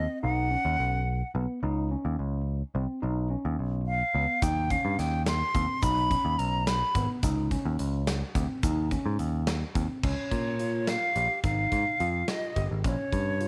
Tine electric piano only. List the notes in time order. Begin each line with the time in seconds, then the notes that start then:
Already playing: C4
0.23 D#4
0.51 C#4
1.35 B3
1.63 D#4
1.91 C#4
2.75 C4
3.02 D#4
3.30 C#4
4.14 B3
4.42 D#4
4.71 C#4
5.54 C4
5.82 D#4
6.10 C#4
6.95 B3
7.24 D#4
7.52 C#4
8.35 C4
8.64 D#4
8.92 C#4
9.76 C4
10.03 C#4
10.60 F4
11.16 G4
11.44 D#4
12.00 F4
12.56 G4
12.84 C#4
13.41 F4